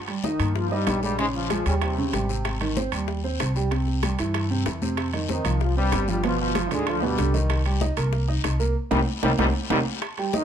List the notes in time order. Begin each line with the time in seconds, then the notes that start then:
0.08 G3 G4, high bongo, high conga, high timbale
0.24 D#3 D#4 D#5, high bongo, high conga, short guiro
0.40 G2 A#3 A#4, high conga, high timbale, short guiro
0.55 F3 F4, high bongo, high conga, long guiro
0.71 G2 G3 D#4 D#5, high bongo, high conga
0.87 A#1, high bongo, low bongo, high conga, high timbale, low timbale, short guiro
1.03 G2 G3 G#3 G#4, high bongo, high conga, short guiro
1.19 G#2 C#3 G#3 C#4, high bongo, high conga, high timbale, long guiro
1.35 F3 F4, high bongo, high conga
1.50 G#3 G#4, high bongo, high conga, high timbale, short guiro
1.66 D#2 C#3 G3 C#4 G4, high conga, high timbale, short guiro
1.81 C3 C4, high bongo, high conga, high timbale, long guiro
1.98 C#3 C#4, high bongo, high conga
2.13 G#1 G3 G4, high bongo, low bongo, high conga, high timbale, short guiro
2.29 C3 C4, high bongo, short guiro
2.45 high bongo, high conga, high timbale, long guiro
2.61 D#3 D#4, high bongo, high conga, high timbale
2.76 C4 C5, high bongo, high conga, short guiro
2.92 D#2 G3 G4, high conga, high timbale, short guiro
3.08 high bongo, high conga, long guiro
3.24 C4 C5, high bongo, high conga
3.40 C2, high bongo, low bongo, high conga, high timbale, short guiro
3.56 G3 G4, high bongo, high conga, short guiro
3.71 C3 C4, high bongo, high conga, high timbale, long guiro
3.87 high bongo, high conga
4.03 G3 G4, high bongo, high conga, high timbale, short guiro
4.19 G2 E3 E4, high conga, high timbale, short guiro
4.34 high bongo, high conga, high timbale, long guiro
4.50 C3 C4, high bongo, high conga
4.66 E3 E4, high bongo, low bongo, high conga, high timbale, short guiro
4.82 C3 C4, high bongo, high conga, short guiro
4.97 high bongo, high timbale, long guiro
5.13 D#3 D#4, high bongo, high conga, high timbale
5.29 D#3 C4 D#4 C5, high bongo, high conga, short guiro
5.45 C2 F3 F4, high conga, high timbale, short guiro
5.61 F3 F4, high bongo, high conga, long guiro
5.77 G2 G3 C4 C5, high bongo, high conga
5.92 G1, high bongo, low bongo, high conga, high timbale, low timbale, short guiro
6.08 G2 F3 G3 F4, high bongo, high conga, short guiro
6.24 B2 F3 B3 F4, high bongo, high conga, high timbale, long guiro
6.39 F3 F4, high bongo, high conga
6.55 F3 F4, high bongo, high conga, high timbale, short guiro
6.71 D2 G#2 D3 G#3 D4, high conga, high timbale, short guiro
6.87 F3 F4, high bongo, high conga, high timbale, long guiro
7.02 G2 B2 G3 B3, high bongo, high conga
7.18 C2 D3 D4, high bongo, low bongo, high conga, high timbale, short guiro
7.34 D#3 D#4, high bongo, short guiro
7.50 high bongo, high conga, high timbale, long guiro
7.65 G3 G4, high bongo, high conga, high timbale
7.81 D#4 D#5, high bongo, high conga, short guiro
7.97 C2 A#3 A#4, high conga, high timbale, short guiro
8.13 high bongo, high conga, long guiro
8.28 D#4 D#5, high bongo, high conga
8.44 C2, high bongo, low bongo, high conga, high timbale, short guiro
8.60 A#3 A#4, high bongo, high conga, short guiro
8.91 C2 C3 D#3 G3 A#3 C4 D#4, low bongo, high conga, high timbale, long guiro
9.23 C2 C3 D#3 G3 A#3 C4 D#4, low bongo, high conga, high timbale, long guiro
9.39 C2 C3 D#3 G3 A#3 C4 D#4, low bongo, high conga, high timbale, long guiro
9.70 C2 C3 D#3 G3 A#3 C4 D#4, low bongo, high conga, high timbale, long guiro
10.02 high bongo, high conga, high timbale
10.18 G3 G4 G5, high bongo, high conga, high timbale
10.33 D#3 D#4 D#5 D#6, high bongo, high conga, short guiro